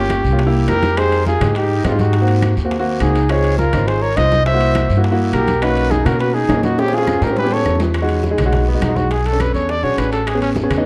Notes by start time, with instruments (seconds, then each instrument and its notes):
Already playing: upright bass G1, grand piano A#3 C#4 F4, flute C#4, trumpet G4
0.10 high bongo, high conga, high timbale, short guiro, claves
0.24 upright bass C2, high bongo, high conga, short guiro
0.32 grand piano A#3 C#4 F4
0.39 high bongo, high conga, high timbale, long guiro
0.47 grand piano A#3 E4 G4
0.54 high bongo, high conga
0.68 upright bass F2, flute G4, trumpet A#4, high bongo, low bongo, high conga, high timbale, low timbale, short guiro, claves
0.83 high conga, high timbale, short guiro
0.97 grand piano G#3 D#4 G4, flute G#4, trumpet C5, high bongo, high conga, high timbale, long guiro, claves
1.12 high bongo, high conga, high timbale
1.26 flute F4, trumpet G#4, high bongo, high conga, short guiro
1.41 upright bass G#2, grand piano G#3 D#4 G4, high conga, low conga, high timbale, short guiro, claves
1.55 flute D#4, trumpet G4, high bongo, high conga, high timbale, long guiro
1.70 high bongo, high conga
1.84 upright bass G#2, grand piano G#3 D#4 G4, flute C4, trumpet F4, high bongo, low bongo, high conga, high timbale, short guiro, claves
1.92 grand piano G#3 D#4 G4
1.99 flute D#4, trumpet F#4, high conga, short guiro
2.13 high bongo, high conga, high timbale, long guiro
2.21 grand piano A#3 C4 F#4
2.28 high bongo, high conga, high timbale
2.42 high bongo, high conga, high timbale, short guiro, claves
2.57 upright bass D#2, high bongo, high conga, short guiro
2.65 grand piano A#3 C4 F#4
2.71 high bongo, high conga, high timbale, long guiro
2.79 grand piano A#3 C4 F#4
2.86 high bongo, high conga
3.00 upright bass C#2, flute D#4, trumpet G#4, high bongo, low bongo, high conga, high timbale, short guiro, claves
3.15 high timbale, short guiro
3.29 grand piano C4 D#4 F4, flute G#4, trumpet C#5, high bongo, high conga, high timbale, long guiro, claves
3.44 high bongo, high conga, high timbale
3.58 flute F4, trumpet A#4, high bongo, high conga, short guiro
3.73 upright bass G#1, grand piano C4 D#4 F4, high bongo, high conga, low conga, high timbale, short guiro, claves
3.87 flute G#4, trumpet C5, high bongo, high conga, high timbale, long guiro
4.02 flute A#4, trumpet C#5, high bongo, high conga
4.16 upright bass C2, grand piano C4 D#4 F4, flute C5, trumpet D#5, high bongo, low bongo, high conga, high timbale, short guiro, claves
4.24 grand piano C4 D#4 F4
4.31 high conga, short guiro
4.46 flute C5, trumpet E5, high bongo, high conga, high timbale, long guiro
4.54 grand piano A#3 E4 F#4
4.60 high conga, high timbale
4.75 high bongo, high conga, high timbale, short guiro, claves
4.89 upright bass G2, high conga, short guiro
4.97 grand piano A#3 E4 F#4
5.04 high bongo, high conga, high timbale, long guiro
5.12 grand piano A#3 E4 F#4
5.19 high bongo, high conga
5.33 upright bass B1, flute G4, trumpet A#4, high bongo, low bongo, high conga, high timbale, short guiro, claves
5.47 high conga, high timbale, short guiro
5.62 grand piano A#3 C#4 D#4, flute F#4, trumpet B4, high bongo, high conga, high timbale, long guiro, claves
5.77 high bongo, high conga, high timbale
5.91 flute D#4, trumpet G#4, high bongo, high conga, short guiro
6.05 upright bass B2, grand piano A#3 C#4 F#4, flute F#4, trumpet A#4, high bongo, high conga, low conga, high timbale, short guiro, claves
6.20 flute F#4, trumpet B4, high bongo, high conga, high timbale, long guiro
6.34 flute D#4, trumpet G#4, high bongo, high conga
6.49 upright bass A#2, grand piano A#3 C#4 D#4, high bongo, low bongo, high conga, high timbale, low timbale, short guiro, claves
6.56 grand piano A#3 C#4 D#4
6.63 flute D#4, trumpet F#4, high conga, short guiro
6.78 flute C#4, trumpet G4, high bongo, high conga, high timbale, long guiro
6.86 grand piano C4 C#4 G#4, high bongo
6.93 flute F4, trumpet G#4, high conga, high timbale
6.98 high bongo
7.07 high bongo, high conga, high timbale, short guiro, claves
7.21 upright bass A2, flute G4, trumpet A#4, high conga, low timbale, short guiro
7.27 grand piano C4 C#4 G4, low bongo
7.36 flute G4, trumpet B4, low bongo, high conga, low timbale, long guiro
7.44 grand piano B3 C#4 G4, low bongo
7.51 flute A4, trumpet C#5, high conga, low timbale
7.56 low bongo
7.65 upright bass E2, low bongo, high conga, short guiro, claves
7.75 low bongo
7.80 low timbale, short guiro
7.85 low bongo
7.94 high bongo, high conga, high timbale, long guiro, claves
8.02 grand piano G#3 D#4 F#4
8.09 high bongo, high conga, high timbale
8.23 high bongo, high conga, short guiro
8.31 grand piano G#3 D#4 G#4
8.38 upright bass B1, high conga, low conga, high timbale, short guiro, claves
8.46 grand piano G#3 D#4 F#4
8.53 high bongo, high conga, low conga, high timbale, long guiro
8.67 trumpet B3, high bongo, high conga
8.74 grand piano G#3 D#4 F#4
8.81 upright bass B1, trumpet D#4, high bongo, low bongo, high conga, high timbale, short guiro, claves
8.89 grand piano G#3 D#4 F#4
8.96 trumpet F#4, high conga, short guiro
9.11 trumpet G#4, high bongo, high conga, high timbale, long guiro
9.25 trumpet A4, high bongo, high conga, high timbale
9.32 grand piano C#4 D4 A4
9.40 trumpet B4, high bongo, high conga, high timbale, short guiro, claves
9.54 upright bass E2, trumpet C#5, high bongo, high conga, short guiro
9.69 trumpet D5, high bongo, high conga, high timbale, long guiro
9.83 upright bass B1, grand piano C#4 D4 F#4 G#4, trumpet C#5, high bongo, high conga
9.97 upright bass A1, trumpet B4, high bongo, low bongo, high conga, high timbale, short guiro, claves
10.12 trumpet A4, high timbale, short guiro
10.27 trumpet G#4, high bongo, high conga, high timbale, long guiro, claves
10.35 grand piano B3 C#4 G#4
10.41 trumpet C#4, high bongo, high conga, high timbale
10.56 high bongo, high conga, short guiro
10.63 grand piano B3 C#4 G#4
10.70 upright bass E2, high bongo, high conga, low conga, high timbale, short guiro, claves
10.77 grand piano B3 C#4 D#4